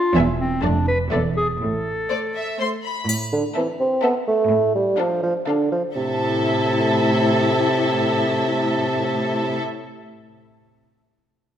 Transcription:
Already playing: F4
0.16 E1 E2 B3 E5 G#5
0.39 C4
0.63 F1 F2 A3 D4 D5 A5
0.88 B4
1.11 E1 E2 B3 A4 D5 E5
1.37 G#4
1.61 A1 A2 A4
2.10 A3 C5 D5
2.36 E5
2.59 A3 C5 C6
2.85 B5
3.08 A2, triangle
3.33 D3
3.56 E3 C4 A4 E5
3.80 C4
4.03 B3 C4 A4 E5
4.28 A3
4.50 A2
4.75 G3
4.99 F3 D4 A4 F5
5.23 F3
5.47 D3 D4 A4 F5
5.72 F3
5.95 A2 C3 E4 A4 E5

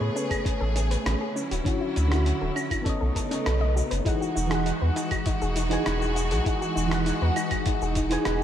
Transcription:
Already playing: C#3 A3 B3 G#4 B4 C#5
0.00 A2 B4
0.15 C#4, shaker
0.30 G#4, kick, closed hi-hat, claves, shaker
0.45 C#4, kick, closed hi-hat, shaker
0.60 A1 A4
0.75 C#4, closed hi-hat, shaker
0.91 B4, closed hi-hat, shaker
1.06 A1 C#4, cross-stick, closed hi-hat, shaker
1.21 G#4
1.36 D3 F#3 C#4 E4, shaker
1.51 D1 F#4, closed hi-hat, shaker
1.64 D3 C#4 E4 F#4, kick, closed hi-hat, shaker
1.81 E4
1.96 D2 C#4, closed hi-hat, shaker
2.08 D3 C#4 F#4, cross-stick, closed hi-hat
2.12 E4 F#4, shaker
2.26 C#4, closed hi-hat, shaker
2.41 D1 A4
2.56 C#4, claves, shaker
2.71 E4, kick, closed hi-hat, claves, shaker
2.82 C#3 B3 C#4 D#4 A4, kick
2.86 A3 C#5 D#5, closed hi-hat, shaker
3.01 B1 A4
3.15 A4, kick, closed hi-hat, shaker
3.31 C#4, closed hi-hat, shaker
3.46 B1 A4, cross-stick, closed hi-hat, shaker
3.61 D#5
3.76 F#4, shaker
3.91 F#1 B4, closed hi-hat, shaker
4.05 E3 G#3 D#4 F#4 G#4 F#5, kick, closed hi-hat, shaker
4.21 F#4, shaker
4.36 E1 D#4, shaker
4.47 E3 D#4 G#4, cross-stick, closed hi-hat
4.52 G#4 F#5, shaker
4.66 D#4, closed hi-hat, shaker
4.81 E2 B4
4.96 D#4, closed hi-hat, shaker
5.11 F#4, kick, closed hi-hat, claves, shaker
5.26 D#4, kick, closed hi-hat, shaker
5.42 E1 G#4, shaker
5.56 D#4, closed hi-hat, shaker
5.69 E3 D#4 G#4 B4 G#5, closed hi-hat, shaker
5.84 E1 E3 D#4 G#4 F#5, cross-stick, closed hi-hat, shaker
6.01 F#4, shaker
6.16 D#4, closed hi-hat, shaker
6.31 B1 G#4, closed hi-hat, shaker
6.44 E3 D#4 G#4 F#5, kick, closed hi-hat, shaker
6.61 F#4, shaker
6.76 E1 D#4, shaker
6.87 E3 D#4
6.91 G#4 F#5, cross-stick, closed hi-hat, shaker
7.06 D#4, closed hi-hat, shaker
7.21 E2 B4
7.36 D#4, closed hi-hat, claves, shaker
7.51 F#4, kick, closed hi-hat, claves, shaker
7.66 D#4, kick, closed hi-hat, shaker
7.81 E1 G#4, shaker
7.95 D#4, kick, closed hi-hat, shaker
8.09 E3 D#4 G#4 B4 G#5, closed hi-hat, shaker
8.24 E1 E3 D#4 G#4 F#5, cross-stick, closed hi-hat, shaker

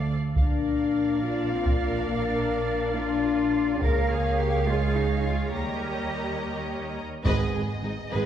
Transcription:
Already playing: D2 A4 D5 F5
0.36 A#1 D4 A#4 D5 F5, taiko
1.23 D4 F4
1.52 C4
1.66 taiko
1.81 D4
2.08 A#3
2.96 D4 F4
3.82 C#2 A#3 G#4 A#4 C#5 F5, taiko
4.12 G#4
4.40 G4
4.67 G#3 F4
4.97 D#4
5.26 F4
5.54 D#2 G3 G4 A#4 D#5 A#5
7.25 G#1 G#2 G#3 B3 G#4 B4 D#5, taiko
7.54 G#1 G#2 G#3 G#4
7.82 G#1 G#2 G#3 D#4 G#4
8.11 G#1 G#2 G#3 G#4 B4

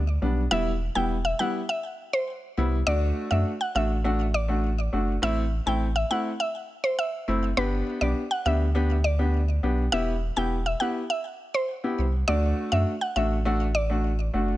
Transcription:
Already playing: D2
0.22 B1 G3 B3 D4
0.51 E1 G3 B3 E4 E5
0.95 E1 G3 B3 E4 G5
1.25 E5
1.39 G3 B3 E4 F#5
1.69 E5
2.13 C5
2.57 C2 G3 B3 E4
2.87 D2 A3 D4 F#4 D5
3.31 F#2 A3 D4 F#4 E5
3.61 F#5
3.75 A1 A3 D4 F#4 E5
4.04 A3 D4 F#4
4.34 D5
4.48 A3 D4 F#4
4.93 F#1 A3 D4 F#4
5.22 A1 A3 C4 E4 E5
5.66 A1 A3 C4 E4 G5
5.96 E5
6.10 A3 C4 E4 F#5
6.40 E5
6.84 C5
6.99 E5
7.28 F#1 A3 C4 E4
7.57 G1 B3 D4 G4 B4
8.01 B1 B3 D4 G4 D5
8.31 F#5
8.46 D2 B3 D4 G4 E5
8.75 B3 D4 G4
9.04 D5
9.19 B3 D4 G4
9.63 B1 B3 D4 G4
9.92 E1 B3 E4 G4 E5
10.37 E1 B3 E4 G4 G5
10.66 E5
10.80 B3 E4 G4 F#5
11.10 E5
11.54 C5
11.84 B3 E4 G4
11.99 C2
12.28 D2 A3 D4 F#4 D5
12.72 F#2 A3 D4 F#4 E5
13.01 F#5
13.16 A1 A3 D4 F#4 E5
13.45 A3 D4 F#4
13.75 D5
13.90 A3 D4 F#4
14.34 F#1 A3 D4 F#4

